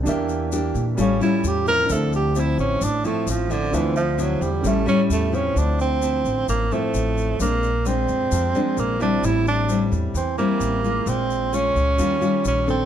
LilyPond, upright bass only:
\new Staff \with { instrumentName = "Upright bass" } { \clef bass \time 4/4 \key d \minor \tempo 4 = 131 e,4. bes,8 a,,8 r8 e,4 | d,4. a,,8 a,,8 r8 a,,4 | d,4. e,8 a,,8 r8 e,4 | d,4. a,,8 a,,8 r8 a,,4 |
bes,,4. f,8 f,8 r8 bes,,4 | a,,4. e,8 e,8 r8 a,,4 | bes,,4. des,8 ees,8 r8 bes,,4 | }